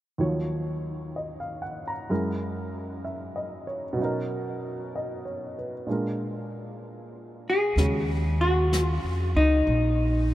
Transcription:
0.18 upright piano D#2 D#3 F3 F#3 C#5
1.16 upright piano D#5
1.40 upright piano F5
1.62 upright piano F#5
1.88 upright piano A#5
2.10 upright piano F#2 F#3 G#3 E4 A#4
3.05 upright piano E5
3.36 upright piano D#5
3.67 upright piano C#5
3.93 upright piano B2 F#3
3.99 upright piano C#4 D#4
4.04 upright piano A#4
4.96 upright piano D#5
5.25 upright piano C#5
5.59 upright piano B4
5.87 upright piano A#2 G#3 D4 F4
5.92 upright piano A#4
7.50 hollow-body jazz guitar G#4
7.76 upright bass D#2, upright piano C#3 G#3 C#4 F#4, brush sweep, snare
8.41 hollow-body jazz guitar F#4
8.73 brush sweep, snare, hi-hat pedal
8.83 hollow-body jazz guitar F4
9.04 upright bass F2
9.35 upright bass C#2, hollow-body jazz guitar D#4
9.67 upright bass A#1, brush sweep

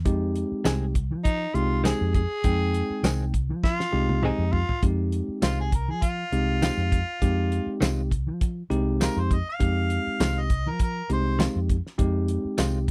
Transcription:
0.05 fingered electric bass F2, tine electric piano G#3 C4 D#4 G4, kick, closed hi-hat
0.36 closed hi-hat
0.52 muted fingered electric bass stroke
0.65 fingered electric bass C2, clean electric guitar D#3 G#3 C4 G#4, snare, closed hi-hat, tambourine
0.95 kick, closed hi-hat
1.11 fingered electric bass F3
1.24 tenor saxophone D#4, kick, closed hi-hat
1.54 fingered electric bass C2, tine electric piano G#3 C4 D#4 G4, tenor saxophone F4, closed hi-hat
1.84 clean electric guitar D#3 G#3 C4 G#4, tenor saxophone G#4, snare, closed hi-hat, tambourine
2.01 fingered electric bass F2
2.14 tenor saxophone G#4, kick, closed hi-hat
2.44 fingered electric bass F2, tine electric piano G#3 C4 D#4 G5, kick, closed hi-hat
2.74 closed hi-hat
2.90 muted fingered electric bass stroke
3.03 fingered electric bass C2, clean electric guitar D#3 G#3 C4 G#4, snare, closed hi-hat, tambourine
3.34 kick, closed hi-hat
3.49 fingered electric bass F3
3.64 tenor saxophone F4, kick, snare
3.80 snare
3.92 fingered electric bass C2, tine electric piano G#3 C4 D#4 G4
4.09 high tom
4.23 clean electric guitar D#3 G#3 C4 G#4, tenor saxophone D#4, mid tom
4.38 fingered electric bass F2
4.53 tenor saxophone F4, floor tom
4.69 floor tom
4.83 fingered electric bass F2, tine electric piano G#3 C4 D#4 G4, kick, closed hi-hat
5.12 closed hi-hat
5.28 muted fingered electric bass stroke
5.42 fingered electric bass C2, clean electric guitar D#3 G#3 C4 F4, harmonica F4, snare, closed hi-hat, tambourine
5.60 harmonica G#4
5.72 harmonica A#4, kick, closed hi-hat
5.88 fingered electric bass F3, harmonica G#4
6.02 harmonica F4, kick, closed hi-hat
6.32 fingered electric bass C2, tine electric piano G#3 C4 D#4 G4, closed hi-hat
6.62 clean electric guitar D#3 G#3 C4 F4, snare, closed hi-hat, tambourine
6.77 fingered electric bass F2
6.92 kick, closed hi-hat
7.22 fingered electric bass F2, tine electric piano G#3 C4 D#4 G4, kick, closed hi-hat
7.52 closed hi-hat
7.66 muted fingered electric bass stroke
7.81 fingered electric bass C2, clean electric guitar D#3 G#3 C4 F4, snare, closed hi-hat, tambourine
8.11 kick, closed hi-hat
8.27 fingered electric bass F3
8.41 kick, closed hi-hat
8.70 fingered electric bass C2, tine electric piano G#3 C4 D#4 G4, closed hi-hat
9.01 clean electric guitar D#3 G#3 C4 F4, harmonica A#4, snare, closed hi-hat, tambourine
9.16 fingered electric bass F2, harmonica C5
9.31 harmonica D#5, kick, closed hi-hat
9.49 harmonica F5
9.59 fingered electric bass F2, tine electric piano G#3 C4 D#4 G4, kick, closed hi-hat
9.90 closed hi-hat
10.07 muted fingered electric bass stroke
10.20 fingered electric bass C2, clean electric guitar D#3 G#3 C4 F4, snare, closed hi-hat, tambourine
10.40 harmonica D#5
10.50 kick, closed hi-hat
10.66 fingered electric bass F3, harmonica A#4
10.79 harmonica A#4, kick, closed hi-hat
11.09 fingered electric bass C2, tine electric piano G#3 C4 D#4 G4, harmonica C5, closed hi-hat
11.39 clean electric guitar D#3 G#3 C4 F4, snare, closed hi-hat, tambourine
11.56 fingered electric bass F2
11.69 kick, closed hi-hat
11.87 snare
11.98 fingered electric bass F2, tine electric piano G#3 C4 D#4 G4, kick, closed hi-hat
12.28 closed hi-hat
12.45 muted fingered electric bass stroke
12.58 fingered electric bass C2, clean electric guitar D#3 G#3 C4 F4, snare, closed hi-hat, tambourine

